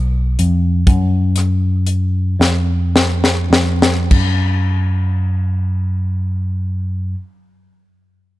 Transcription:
Already playing: tine electric piano B1
0.39 tine electric piano F2, closed hi-hat
0.87 tine electric piano F#2, kick, closed hi-hat
1.36 cross-stick, closed hi-hat
1.87 closed hi-hat
2.39 tine electric piano F2, snare
2.96 snare
3.24 snare
3.50 tine electric piano F2, snare
3.82 snare
4.11 tine electric piano F#2, kick, crash

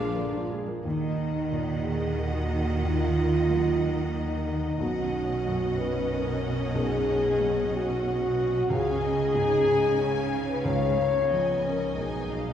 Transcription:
Already playing: double bass section A#1, felt piano A#2 A#3 D4 G#4 A#4, viola section F3 D4, cello section F3, french horn section D4, violin section F4 F5, flute section F4, clarinet G#4, cor anglais D5
0.15 viola section D3, felt piano A#3
0.32 viola section F3, felt piano D4
0.50 viola section G#3, felt piano G#4
0.67 viola section F3, felt piano A#4
0.84 double bass section D#2, felt piano D#2, cello section D#3, viola section A#3, french horn section D#4, violin section D#5 F#5
1.51 felt piano A#2
1.84 french horn section G#4
2.21 french horn section F#4
2.83 felt piano D#2, french horn section F4
3.50 felt piano F#3
3.82 french horn section D#4
4.80 felt piano B1, double bass section B1, cello section B2, viola section C#4, french horn section F#4, violin section D#5 F#5
5.46 felt piano F#2
5.78 french horn section B4
6.11 french horn section A#4
6.75 felt piano B1, french horn section G#4
7.40 felt piano F#3
7.74 french horn section F#4
8.69 double bass section C#2, felt piano C#2, cello section C#3, viola section C#4, french horn section G#4, violin section F5 G#5
9.02 violin section D#5
9.34 felt piano G#2, viola section D#4, violin section D#5 G#5
9.67 viola section D#4
9.99 viola section C#4, violin section F5
10.49 french horn section B4
10.65 felt piano C#2, viola section G#3, french horn section C#5, violin section F5
10.98 viola section A#3
11.31 felt piano F3, viola section B3, violin section D#5 G#5
11.63 viola section C#4, french horn section A#4
11.96 double bass section B1, cello section B2, viola section D#4, french horn section G#4, violin section G#5
12.31 violin section F5

